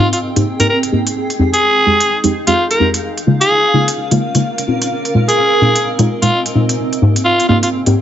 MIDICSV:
0, 0, Header, 1, 5, 480
1, 0, Start_track
1, 0, Tempo, 468750
1, 1187, Time_signature, 4, 2, 24, 8
1, 8208, End_track
2, 0, Start_track
2, 0, Title_t, "Ambient pad"
2, 0, Program_c, 0, 92
2, 0, Note_on_c, 0, 60, 71
2, 0, Note_on_c, 0, 68, 72
2, 0, Note_on_c, 0, 79, 73
2, 1185, Note_on_c, 0, 63, 85
2, 1782, Note_on_c, 0, 77, 78
2, 1964, Note_off_c, 0, 79, 0
2, 1966, Note_off_c, 0, 60, 0
2, 3107, Note_on_c, 0, 61, 76
2, 3242, Note_on_c, 0, 70, 90
2, 3786, Note_off_c, 0, 68, 0
2, 3788, Note_off_c, 0, 63, 0
2, 4787, Note_off_c, 0, 61, 0
2, 4787, Note_on_c, 0, 60, 85
2, 5038, Note_on_c, 0, 75, 70
2, 5670, Note_off_c, 0, 77, 0
2, 5763, Note_on_c, 0, 80, 74
2, 6948, Note_off_c, 0, 80, 0
2, 7164, Note_on_c, 0, 68, 103
2, 7537, Note_on_c, 0, 79, 75
2, 7724, Note_off_c, 0, 70, 0
2, 7724, Note_off_c, 0, 75, 0
2, 8208, Note_off_c, 0, 60, 0
2, 8208, Note_off_c, 0, 68, 0
2, 8208, Note_off_c, 0, 79, 0
2, 8208, End_track
3, 0, Start_track
3, 0, Title_t, "Alto saxophone"
3, 0, Program_c, 1, 65
3, 130, Note_on_c, 1, 65, 69
3, 191, Note_off_c, 1, 65, 0
3, 611, Note_on_c, 1, 70, 80
3, 672, Note_off_c, 1, 70, 0
3, 706, Note_on_c, 1, 70, 72
3, 799, Note_off_c, 1, 70, 0
3, 1571, Note_on_c, 1, 68, 94
3, 2233, Note_off_c, 1, 68, 0
3, 2530, Note_on_c, 1, 65, 85
3, 2715, Note_off_c, 1, 65, 0
3, 2770, Note_on_c, 1, 70, 82
3, 2955, Note_off_c, 1, 70, 0
3, 3490, Note_on_c, 1, 68, 91
3, 3970, Note_off_c, 1, 68, 0
3, 5410, Note_on_c, 1, 68, 93
3, 6073, Note_off_c, 1, 68, 0
3, 6369, Note_on_c, 1, 65, 87
3, 6555, Note_off_c, 1, 65, 0
3, 7423, Note_on_c, 1, 65, 90
3, 7646, Note_off_c, 1, 65, 0
3, 7664, Note_on_c, 1, 65, 80
3, 7758, Note_off_c, 1, 65, 0
3, 7812, Note_on_c, 1, 65, 66
3, 7872, Note_off_c, 1, 65, 0
3, 8208, End_track
4, 0, Start_track
4, 0, Title_t, "Synth stab"
4, 0, Program_c, 2, 62
4, 0, Note_on_c, 2, 44, 83
4, 0, Note_on_c, 2, 58, 74
4, 0, Note_on_c, 2, 60, 70
4, 0, Note_on_c, 2, 63, 74
4, 0, Note_on_c, 2, 67, 85
4, 123, Note_off_c, 2, 67, 0
4, 124, Note_off_c, 2, 44, 0
4, 124, Note_off_c, 2, 58, 0
4, 124, Note_off_c, 2, 60, 0
4, 124, Note_off_c, 2, 63, 0
4, 368, Note_on_c, 2, 60, 91
4, 369, Note_on_c, 2, 44, 95
4, 369, Note_on_c, 2, 58, 91
4, 369, Note_on_c, 2, 63, 91
4, 369, Note_on_c, 2, 67, 106
4, 461, Note_off_c, 2, 44, 0
4, 461, Note_off_c, 2, 58, 0
4, 461, Note_off_c, 2, 60, 0
4, 461, Note_off_c, 2, 63, 0
4, 461, Note_off_c, 2, 67, 0
4, 609, Note_on_c, 2, 44, 86
4, 609, Note_on_c, 2, 58, 76
4, 609, Note_on_c, 2, 60, 79
4, 609, Note_on_c, 2, 63, 76
4, 609, Note_on_c, 2, 67, 94
4, 701, Note_off_c, 2, 44, 0
4, 701, Note_off_c, 2, 58, 0
4, 701, Note_off_c, 2, 60, 0
4, 701, Note_off_c, 2, 63, 0
4, 701, Note_off_c, 2, 67, 0
4, 945, Note_on_c, 2, 44, 85
4, 945, Note_on_c, 2, 58, 78
4, 945, Note_on_c, 2, 60, 78
4, 945, Note_on_c, 2, 63, 78
4, 945, Note_on_c, 2, 67, 96
4, 1140, Note_off_c, 2, 67, 0
4, 1141, Note_off_c, 2, 44, 0
4, 1141, Note_off_c, 2, 58, 0
4, 1141, Note_off_c, 2, 60, 0
4, 1141, Note_off_c, 2, 63, 0
4, 1425, Note_on_c, 2, 41, 90
4, 1425, Note_on_c, 2, 56, 81
4, 1425, Note_on_c, 2, 60, 83
4, 1425, Note_on_c, 2, 63, 84
4, 1425, Note_on_c, 2, 67, 105
4, 1563, Note_off_c, 2, 41, 0
4, 1564, Note_off_c, 2, 56, 0
4, 1564, Note_off_c, 2, 60, 0
4, 1564, Note_off_c, 2, 63, 0
4, 1564, Note_off_c, 2, 67, 0
4, 1905, Note_on_c, 2, 60, 74
4, 1905, Note_on_c, 2, 63, 72
4, 1906, Note_on_c, 2, 41, 83
4, 1906, Note_on_c, 2, 56, 73
4, 1906, Note_on_c, 2, 67, 86
4, 2044, Note_off_c, 2, 41, 0
4, 2044, Note_off_c, 2, 56, 0
4, 2044, Note_off_c, 2, 60, 0
4, 2044, Note_off_c, 2, 63, 0
4, 2044, Note_off_c, 2, 67, 0
4, 2290, Note_on_c, 2, 56, 90
4, 2290, Note_on_c, 2, 60, 85
4, 2290, Note_on_c, 2, 63, 87
4, 2290, Note_on_c, 2, 67, 107
4, 2291, Note_on_c, 2, 41, 98
4, 2382, Note_off_c, 2, 41, 0
4, 2382, Note_off_c, 2, 56, 0
4, 2382, Note_off_c, 2, 60, 0
4, 2382, Note_off_c, 2, 63, 0
4, 2382, Note_off_c, 2, 67, 0
4, 2531, Note_on_c, 2, 41, 87
4, 2531, Note_on_c, 2, 56, 78
4, 2531, Note_on_c, 2, 60, 77
4, 2531, Note_on_c, 2, 63, 76
4, 2531, Note_on_c, 2, 67, 99
4, 2622, Note_off_c, 2, 41, 0
4, 2622, Note_off_c, 2, 56, 0
4, 2622, Note_off_c, 2, 60, 0
4, 2622, Note_off_c, 2, 63, 0
4, 2622, Note_off_c, 2, 67, 0
4, 2865, Note_on_c, 2, 41, 84
4, 2865, Note_on_c, 2, 56, 76
4, 2865, Note_on_c, 2, 60, 78
4, 2866, Note_on_c, 2, 63, 76
4, 2866, Note_on_c, 2, 67, 98
4, 3061, Note_off_c, 2, 41, 0
4, 3061, Note_off_c, 2, 56, 0
4, 3061, Note_off_c, 2, 60, 0
4, 3061, Note_off_c, 2, 63, 0
4, 3061, Note_off_c, 2, 67, 0
4, 3347, Note_on_c, 2, 56, 86
4, 3347, Note_on_c, 2, 58, 83
4, 3347, Note_on_c, 2, 65, 101
4, 3348, Note_on_c, 2, 49, 86
4, 3348, Note_on_c, 2, 63, 82
4, 3485, Note_off_c, 2, 49, 0
4, 3485, Note_off_c, 2, 56, 0
4, 3485, Note_off_c, 2, 58, 0
4, 3485, Note_off_c, 2, 63, 0
4, 3485, Note_off_c, 2, 65, 0
4, 3826, Note_on_c, 2, 49, 79
4, 3826, Note_on_c, 2, 56, 71
4, 3826, Note_on_c, 2, 65, 87
4, 3827, Note_on_c, 2, 58, 74
4, 3827, Note_on_c, 2, 63, 74
4, 3964, Note_off_c, 2, 49, 0
4, 3964, Note_off_c, 2, 56, 0
4, 3964, Note_off_c, 2, 65, 0
4, 3965, Note_off_c, 2, 58, 0
4, 3965, Note_off_c, 2, 63, 0
4, 4212, Note_on_c, 2, 58, 89
4, 4212, Note_on_c, 2, 63, 88
4, 4212, Note_on_c, 2, 65, 108
4, 4213, Note_on_c, 2, 49, 96
4, 4213, Note_on_c, 2, 56, 91
4, 4303, Note_off_c, 2, 49, 0
4, 4303, Note_off_c, 2, 56, 0
4, 4303, Note_off_c, 2, 58, 0
4, 4303, Note_off_c, 2, 63, 0
4, 4303, Note_off_c, 2, 65, 0
4, 4452, Note_on_c, 2, 49, 82
4, 4452, Note_on_c, 2, 58, 78
4, 4452, Note_on_c, 2, 63, 79
4, 4452, Note_on_c, 2, 65, 94
4, 4453, Note_on_c, 2, 56, 81
4, 4543, Note_off_c, 2, 49, 0
4, 4543, Note_off_c, 2, 56, 0
4, 4543, Note_off_c, 2, 58, 0
4, 4543, Note_off_c, 2, 63, 0
4, 4543, Note_off_c, 2, 65, 0
4, 4788, Note_on_c, 2, 46, 82
4, 4788, Note_on_c, 2, 56, 81
4, 4789, Note_on_c, 2, 60, 81
4, 4789, Note_on_c, 2, 63, 77
4, 4789, Note_on_c, 2, 65, 94
4, 4982, Note_off_c, 2, 46, 0
4, 4982, Note_off_c, 2, 56, 0
4, 4982, Note_off_c, 2, 60, 0
4, 4982, Note_off_c, 2, 63, 0
4, 4982, Note_off_c, 2, 65, 0
4, 5267, Note_on_c, 2, 46, 92
4, 5267, Note_on_c, 2, 60, 86
4, 5267, Note_on_c, 2, 63, 85
4, 5267, Note_on_c, 2, 65, 100
4, 5268, Note_on_c, 2, 56, 80
4, 5405, Note_off_c, 2, 46, 0
4, 5405, Note_off_c, 2, 56, 0
4, 5405, Note_off_c, 2, 60, 0
4, 5405, Note_off_c, 2, 63, 0
4, 5405, Note_off_c, 2, 65, 0
4, 5747, Note_on_c, 2, 46, 79
4, 5747, Note_on_c, 2, 56, 73
4, 5747, Note_on_c, 2, 60, 73
4, 5747, Note_on_c, 2, 63, 71
4, 5747, Note_on_c, 2, 65, 91
4, 5885, Note_off_c, 2, 46, 0
4, 5885, Note_off_c, 2, 56, 0
4, 5885, Note_off_c, 2, 60, 0
4, 5885, Note_off_c, 2, 63, 0
4, 5885, Note_off_c, 2, 65, 0
4, 6131, Note_on_c, 2, 46, 100
4, 6131, Note_on_c, 2, 60, 94
4, 6131, Note_on_c, 2, 63, 92
4, 6131, Note_on_c, 2, 65, 110
4, 6132, Note_on_c, 2, 56, 90
4, 6222, Note_off_c, 2, 46, 0
4, 6222, Note_off_c, 2, 56, 0
4, 6222, Note_off_c, 2, 60, 0
4, 6222, Note_off_c, 2, 63, 0
4, 6222, Note_off_c, 2, 65, 0
4, 6372, Note_on_c, 2, 46, 89
4, 6372, Note_on_c, 2, 56, 76
4, 6372, Note_on_c, 2, 60, 79
4, 6372, Note_on_c, 2, 63, 79
4, 6373, Note_on_c, 2, 65, 94
4, 6462, Note_off_c, 2, 46, 0
4, 6463, Note_off_c, 2, 56, 0
4, 6463, Note_off_c, 2, 60, 0
4, 6463, Note_off_c, 2, 63, 0
4, 6463, Note_off_c, 2, 65, 0
4, 6706, Note_on_c, 2, 60, 80
4, 6707, Note_on_c, 2, 46, 88
4, 6707, Note_on_c, 2, 56, 76
4, 6707, Note_on_c, 2, 63, 81
4, 6707, Note_on_c, 2, 65, 91
4, 6901, Note_off_c, 2, 60, 0
4, 6901, Note_off_c, 2, 63, 0
4, 6902, Note_off_c, 2, 46, 0
4, 6902, Note_off_c, 2, 56, 0
4, 6902, Note_off_c, 2, 65, 0
4, 7187, Note_on_c, 2, 44, 92
4, 7188, Note_on_c, 2, 58, 82
4, 7188, Note_on_c, 2, 60, 79
4, 7188, Note_on_c, 2, 63, 83
4, 7188, Note_on_c, 2, 67, 100
4, 7325, Note_off_c, 2, 44, 0
4, 7325, Note_off_c, 2, 58, 0
4, 7325, Note_off_c, 2, 60, 0
4, 7325, Note_off_c, 2, 63, 0
4, 7325, Note_off_c, 2, 67, 0
4, 7667, Note_on_c, 2, 60, 74
4, 7667, Note_on_c, 2, 63, 74
4, 7667, Note_on_c, 2, 67, 86
4, 7668, Note_on_c, 2, 44, 81
4, 7668, Note_on_c, 2, 58, 72
4, 7805, Note_off_c, 2, 44, 0
4, 7805, Note_off_c, 2, 58, 0
4, 7805, Note_off_c, 2, 60, 0
4, 7805, Note_off_c, 2, 63, 0
4, 7805, Note_off_c, 2, 67, 0
4, 8051, Note_on_c, 2, 63, 86
4, 8051, Note_on_c, 2, 67, 107
4, 8052, Note_on_c, 2, 44, 100
4, 8052, Note_on_c, 2, 58, 92
4, 8052, Note_on_c, 2, 60, 90
4, 8142, Note_off_c, 2, 44, 0
4, 8142, Note_off_c, 2, 58, 0
4, 8142, Note_off_c, 2, 60, 0
4, 8142, Note_off_c, 2, 63, 0
4, 8142, Note_off_c, 2, 67, 0
4, 8208, End_track
5, 0, Start_track
5, 0, Title_t, "Drums"
5, 131, Note_on_c, 9, 42, 58
5, 234, Note_off_c, 9, 42, 0
5, 372, Note_on_c, 9, 42, 49
5, 475, Note_off_c, 9, 42, 0
5, 612, Note_on_c, 9, 42, 60
5, 715, Note_off_c, 9, 42, 0
5, 852, Note_on_c, 9, 42, 46
5, 954, Note_off_c, 9, 42, 0
5, 1092, Note_on_c, 9, 42, 59
5, 1194, Note_off_c, 9, 42, 0
5, 1332, Note_on_c, 9, 42, 36
5, 1435, Note_off_c, 9, 42, 0
5, 1573, Note_on_c, 9, 42, 63
5, 1675, Note_off_c, 9, 42, 0
5, 2052, Note_on_c, 9, 42, 60
5, 2155, Note_off_c, 9, 42, 0
5, 2292, Note_on_c, 9, 42, 52
5, 2394, Note_off_c, 9, 42, 0
5, 2531, Note_on_c, 9, 42, 64
5, 2633, Note_off_c, 9, 42, 0
5, 2771, Note_on_c, 9, 42, 47
5, 2874, Note_off_c, 9, 42, 0
5, 3011, Note_on_c, 9, 42, 65
5, 3113, Note_off_c, 9, 42, 0
5, 3252, Note_on_c, 9, 42, 35
5, 3354, Note_off_c, 9, 42, 0
5, 3492, Note_on_c, 9, 42, 62
5, 3595, Note_off_c, 9, 42, 0
5, 3973, Note_on_c, 9, 42, 65
5, 4075, Note_off_c, 9, 42, 0
5, 4212, Note_on_c, 9, 42, 54
5, 4315, Note_off_c, 9, 42, 0
5, 4452, Note_on_c, 9, 42, 65
5, 4555, Note_off_c, 9, 42, 0
5, 4692, Note_on_c, 9, 42, 51
5, 4795, Note_off_c, 9, 42, 0
5, 4932, Note_on_c, 9, 42, 67
5, 5034, Note_off_c, 9, 42, 0
5, 5172, Note_on_c, 9, 42, 37
5, 5275, Note_off_c, 9, 42, 0
5, 5413, Note_on_c, 9, 42, 63
5, 5516, Note_off_c, 9, 42, 0
5, 5893, Note_on_c, 9, 42, 66
5, 5996, Note_off_c, 9, 42, 0
5, 6133, Note_on_c, 9, 42, 53
5, 6236, Note_off_c, 9, 42, 0
5, 6373, Note_on_c, 9, 42, 67
5, 6475, Note_off_c, 9, 42, 0
5, 6612, Note_on_c, 9, 42, 54
5, 6715, Note_off_c, 9, 42, 0
5, 6853, Note_on_c, 9, 42, 67
5, 6955, Note_off_c, 9, 42, 0
5, 7093, Note_on_c, 9, 42, 35
5, 7195, Note_off_c, 9, 42, 0
5, 7333, Note_on_c, 9, 42, 64
5, 7435, Note_off_c, 9, 42, 0
5, 7574, Note_on_c, 9, 42, 35
5, 7676, Note_off_c, 9, 42, 0
5, 7812, Note_on_c, 9, 42, 65
5, 7914, Note_off_c, 9, 42, 0
5, 8053, Note_on_c, 9, 42, 53
5, 8155, Note_off_c, 9, 42, 0
5, 8208, End_track
0, 0, End_of_file